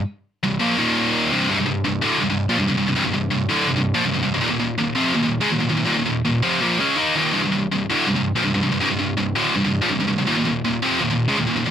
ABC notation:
X:1
M:4/4
L:1/16
Q:1/4=164
K:Cm
V:1 name="Distorted electric guitar" clef=bass
z4 [C,,G,,]2 [B,,F,B,]2 [E,,B,,E,]6 [C,,G,,C,]2 | [C,,G,,] [C,,G,,] [C,,G,,]2 [C,,G,,]2 [D,,=A,,D,]2 [C,,G,,] [C,,G,,]2 [B,,F,] [C,,G,,] [C,,G,,] [C,,G,,] [C,,G,,] | [C,,G,,] [C,,G,,] [C,,G,,]2 [C,,G,,]2 [D,,=A,,D,]2 [C,,G,,] [C,,G,,]2 [B,,F,] [C,,G,,] [C,,G,,] [C,,G,,] [C,,G,,] | [E,,B,,] [E,,B,,] [E,,B,,]2 [E,,B,,]2 [F,,C,F,]2 [E,,B,,] [E,,B,,]2 [_D,A,] [E,,B,,] [E,,B,,] [E,,B,,] [E,,B,,] |
[E,,B,,] [E,,B,,] [E,,B,,]2 [E,,B,,]2 [F,,C,F,]2 [B,,F,B,]2 [_D,A,_D]2 [E,B,E]2 [E,,B,,E,]2 | [C,,G,,] [C,,G,,] [C,,G,,]2 [C,,G,,]2 [D,,=A,,D,]2 [C,,G,,] [C,,G,,]2 [B,,F,] [C,,G,,] [C,,G,,] [C,,G,,] [C,,G,,] | [C,,G,,] [C,,G,,] [C,,G,,]2 [C,,G,,]2 [D,,=A,,D,]2 [C,,G,,] [C,,G,,]2 [B,,F,] [C,,G,,] [C,,G,,] [C,,G,,] [C,,G,,] | [E,,B,,] [E,,B,,] [E,,B,,]2 [E,,B,,]2 [F,,C,F,]2 [E,,B,,] [E,,B,,]2 [_D,A,] [E,,B,,] [E,,B,,] [E,,B,,] [E,,B,,] |]